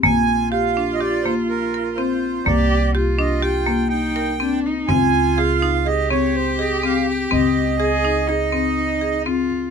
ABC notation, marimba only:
X:1
M:5/4
L:1/8
Q:1/4=124
K:Bbmix
V:1 name="Marimba"
B,2 G D G B,2 B C2 | B,2 G D G B,2 B C2 | C2 A E A C2 A C2 | C2 A E A C2 A C2 |]